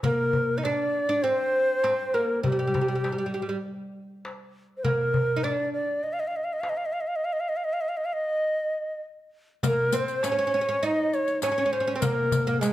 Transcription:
0.03 oud A#3, ney A#4, darbuka dum
0.33 darbuka dum
0.49 darbuka ka
0.58 oud D#4, ney D#5
0.63 oud D4, ney D5, darbuka tek
1.09 oud D4, darbuka ka
1.23 oud C4, ney C5, darbuka ka
1.84 oud C4, darbuka tek
2.14 oud A#3, ney A#4
2.43 oud G3, ney G4, darbuka dum
2.52 oud G3
2.59 oud G3
2.67 oud G3
2.74 oud G3, darbuka dum
2.81 oud G3
2.88 oud G3, darbuka ka
2.95 oud G3
3.04 oud G3, darbuka tek
3.12 oud G3
3.18 oud G3
3.26 oud G3
3.34 oud G3
3.42 oud G3
3.49 oud G3, darbuka ka
3.65 darbuka ka
4.25 darbuka tek
4.77 ney C5
4.84 oud A#3, ney A#4, darbuka dum
5.14 darbuka dum
5.29 darbuka ka
5.37 oud D#4
5.43 oud D4, ney D5, darbuka tek
5.73 ney D5
5.88 darbuka ka
6.04 ney D#5, darbuka ka
6.13 ney F5
6.20 ney D#5
6.27 ney F5
6.36 ney D#5
6.44 ney F5
6.53 ney D#5
6.61 ney F5, darbuka tek
6.69 ney D#5
6.77 ney F5
6.86 ney D#5
6.93 ney F5
7.01 ney D#5
7.08 ney F5
7.16 ney D#5
7.25 ney F5
7.33 ney D#5
7.40 ney F5
7.49 ney D#5
7.56 ney F5
7.64 ney D#5
7.73 ney F5
7.81 ney D#5
7.89 ney F5
7.97 ney D#5
8.05 ney F5
8.13 ney D#5
9.63 oud A#3, ney A#4, riq, darbuka dum
9.92 oud C4, ney C5, riq
10.08 riq
10.23 oud C#4, ney C#5, riq, darbuka tek
10.32 oud C#4
10.39 oud C#4
10.47 oud C#4
10.54 oud C#4
10.61 oud C#4
10.69 oud C#4
10.83 oud D#4, ney D#5, riq
11.13 ney C#5, riq, darbuka ka
11.28 riq, darbuka ka
11.42 oud C#4, ney C#5, riq, darbuka tek
11.52 oud C#4
11.58 oud C#4
11.66 oud C#4
11.73 oud C#4, ney C5
11.80 oud C#4
11.87 oud C#4
11.94 oud C4, ney C5
12.01 oud A#3, ney A#4, riq, darbuka dum
12.32 riq, darbuka dum
12.47 oud A#3, riq
12.53 ney A#4
12.60 oud G#3, ney G#4, riq, darbuka tek

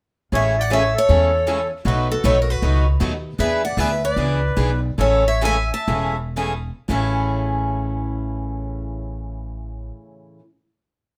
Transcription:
0.32 upright bass A1, steel-string acoustic guitar C#3 E3 G#3 A3 C#4 E4 G#4 A4 E5, accordion C#5
0.58 accordion D5, steel-string acoustic guitar F#5
0.70 steel-string acoustic guitar C#3 E3 G#3 A3 C#4 E4 G#4 A4 E5, accordion C#5
0.94 accordion A4
0.98 steel-string acoustic guitar C#5
1.08 upright bass E2, steel-string acoustic guitar C#3 E3 G#3 A3 C#4 E4 G#4 A4
1.47 steel-string acoustic guitar C#3 E3 G#3 A3 C#4 E4 G#4 A4
1.85 upright bass B1, steel-string acoustic guitar B2 F#3 A3 D#4 F#4 B4, accordion F#4
2.11 accordion F#4, steel-string acoustic guitar A4
2.23 upright bass B1, steel-string acoustic guitar B2 F#3 A3 D#4 F#4 B4 C#5, accordion A4
2.40 accordion F#4, steel-string acoustic guitar A#4
2.49 accordion F#4, steel-string acoustic guitar B4
2.62 upright bass C#2, steel-string acoustic guitar B2 F#3 A3 D#4 F#4 B4
3.00 upright bass D#2, steel-string acoustic guitar B2 F#3 A3 D#4 F#4 B4
3.39 upright bass E2, steel-string acoustic guitar E3 B3 D4 G#4 B4 E5, accordion B4
3.65 accordion D5, steel-string acoustic guitar F#5
3.77 upright bass D2, steel-string acoustic guitar E3 B3 D4 G#4 B4 E5, accordion B4
4.04 accordion B4, steel-string acoustic guitar D5
4.16 upright bass C#2, steel-string acoustic guitar E3 B3 D4 G#4 B4
4.56 upright bass B1, steel-string acoustic guitar E3 B3 D4 G#4 B4
4.98 upright bass A1, steel-string acoustic guitar C#3 E3 G#3 A3 C#4 E4 G#4 A4 C#5, accordion A4
5.27 accordion C#5, steel-string acoustic guitar E5
5.41 steel-string acoustic guitar C#3 E3 G#3 A3 C#4 E4 G#4 A4 G#5, accordion E5
5.72 accordion E5, steel-string acoustic guitar A5
5.87 upright bass E1, steel-string acoustic guitar C#3 E3 G#3 A3 C#4 E4 G#4 A4
6.36 steel-string acoustic guitar C#3 E3 G#3 A3 C#4 E4 G#4 A4
6.89 upright bass A1, steel-string acoustic guitar A2 C#3 E3 A3 C#4 E4 G#4

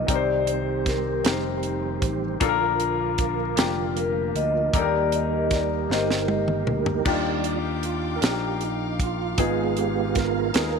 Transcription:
Already playing: grand piano G2 B3 D#4 F4 G4, tonewheel organ D#3 G3
0.07 fingered electric bass C2, grand piano C3 C4 D#4 G4 A#4, tonewheel organ C4 G4 C5, vibraphone G4 D5, kick, closed hi-hat
0.15 grand piano C5
0.47 vibraphone C5, closed hi-hat
0.86 vibraphone A#4, kick, snare, closed hi-hat
1.24 fingered electric bass F1, grand piano C4 D#4 G4 A#4, vibraphone D#4, snare, closed hi-hat
1.32 grand piano C5
1.63 closed hi-hat
2.02 fingered electric bass A1, kick, closed hi-hat
2.40 fingered electric bass A#1, grand piano A#2 A#3 D4 F4 A4, tonewheel organ D3 F3 A#3 F4 A#4, kick, closed hi-hat
2.49 grand piano A#4
2.80 closed hi-hat
3.18 kick, closed hi-hat
3.56 fingered electric bass F1, grand piano A#3 D4 F4 G4, snare, closed hi-hat
3.97 vibraphone A#4, closed hi-hat
4.35 fingered electric bass D2, vibraphone D#5, closed hi-hat
4.73 fingered electric bass D#2, grand piano D#3 A#3 D#4 G4 A4, tonewheel organ G3 D#4 G4 A#4, vibraphone G4 A#4 D5, kick, closed hi-hat
4.82 grand piano A#4
5.12 vibraphone D#5, closed hi-hat
5.51 vibraphone D5, kick, snare, closed hi-hat
5.89 fingered electric bass G1, grand piano A#3 D#4 G4 C5, vibraphone G4 A#4 D#5, snare
6.11 snare
6.28 high tom
6.48 mid tom
6.67 fingered electric bass D2, mid tom
6.86 floor tom
7.05 fingered electric bass D#2, grand piano D#3 D4 D#4 F4 G4, tonewheel organ G3 F4 D5, string section F5 G5 D6, kick, crash
7.44 closed hi-hat
7.83 tonewheel organ F4, closed hi-hat
8.16 tonewheel organ A#4
8.21 fingered electric bass A#1, grand piano D4 D#4 F4 A#4, snare, closed hi-hat
8.26 tonewheel organ G4
8.61 tonewheel organ D#4, closed hi-hat
9.00 tonewheel organ F4, kick, closed hi-hat
9.38 fingered electric bass G#1, grand piano G#2 B3 D#4 F4 G#4, tonewheel organ G#3 B3 F4 G#4, kick, closed hi-hat
9.77 tonewheel organ G4, closed hi-hat
10.15 tonewheel organ A#4, kick, snare, closed hi-hat
10.53 fingered electric bass D#2, grand piano B3 D#4 F4 G#4, snare, closed hi-hat

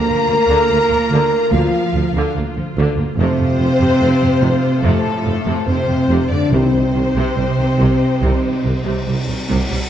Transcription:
Already playing: trombone section F3 A#3, cello section A#3, viola section F4, french horn section A#4, violin section A#5
0.08 double bass section D2, viola section A#3
0.27 double bass section D2, tuba D2, viola section F3
0.47 double bass section D2, viola section D3
0.69 double bass section D2, tuba D2, viola section A#3
0.89 double bass section D2, viola section F3
1.10 double bass section D2, tuba D2, viola section D3
1.51 double bass section D2, tuba D2, viola section D3, trombone section F3 A#3, cello section F3, french horn section F4, violin section F5
1.93 double bass section D2, tuba D2, viola section F3
2.13 double bass section D2, viola section D3
2.35 double bass section D2, tuba D2, viola section A#3
2.56 double bass section D2, viola section F3
2.76 double bass section D2, tuba D2, viola section D3
2.96 double bass section D2, viola section A#3
3.15 tuba F1, double bass section F2, cello section C3, trombone section A3, violin section C5
3.19 viola section C3 F4, trombone section F3, french horn section C4
3.38 double bass section F2, viola section A3
3.58 tuba F1, double bass section F2, viola section F3
3.79 double bass section F2, viola section C3
4.00 tuba F1, double bass section F2, viola section A3
4.21 double bass section F2, viola section F3
4.41 tuba F1, double bass section F2, viola section C3
4.82 tuba F1, double bass section F2, cello section A2, viola section C3, trombone section F3 A3, french horn section A3, violin section A4
5.24 tuba F1, double bass section F2, viola section F3
5.45 double bass section F2, viola section C3
5.66 tuba F1, double bass section F2, cello section C3, viola section A3, french horn section C4, violin section C5
5.87 double bass section F2, viola section F3
6.07 tuba F1, double bass section F2, viola section C3
6.29 double bass section F2, cello section D3, viola section A3, french horn section D4, violin section D5
6.50 double bass section C2, tuba C2, timpani C3, cello section C3, viola section C3 D#4, trombone section D#3 G3, french horn section C4, violin section C5, cymbal swell
6.72 double bass section C2, viola section G3
6.93 double bass section C2, tuba C2, viola section D#3
7.15 double bass section C2, viola section C3
7.36 double bass section C2, tuba C2, viola section G3
7.57 double bass section C2, viola section D#3
7.78 tuba C2, double bass section C2, viola section C3
8.21 tuba C2, double bass section C2, viola section C3, trombone section D#3 G3
8.64 double bass section C2, tuba C2, viola section D#3
8.85 double bass section C2, viola section C3
9.06 tuba C2, double bass section C2, viola section G3
9.27 double bass section C2, viola section D#3
9.48 tuba C2, double bass section C2, viola section C3
9.70 double bass section C2, viola section G3

